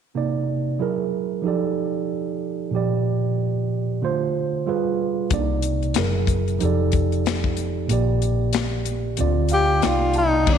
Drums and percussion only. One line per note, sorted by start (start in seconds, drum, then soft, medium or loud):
5.30 kick medium
5.30 closed hi-hat medium
5.62 closed hi-hat medium
5.83 closed hi-hat soft
5.94 finger snap medium
5.94 snare medium
5.94 closed hi-hat medium
6.27 kick medium
6.27 closed hi-hat medium
6.48 closed hi-hat soft
6.60 closed hi-hat medium
6.92 kick medium
6.92 closed hi-hat medium
7.12 closed hi-hat soft
7.26 finger snap medium
7.26 snare medium
7.26 closed hi-hat medium
7.44 kick medium
7.57 closed hi-hat medium
7.89 closed hi-hat medium
8.22 closed hi-hat medium
8.53 finger snap medium
8.53 snare medium
8.53 closed hi-hat medium
8.86 closed hi-hat medium
9.17 closed hi-hat medium
9.49 closed hi-hat medium
9.82 finger snap medium
9.82 snare medium
9.82 closed hi-hat medium
10.14 closed hi-hat medium
10.47 kick medium
10.47 crash medium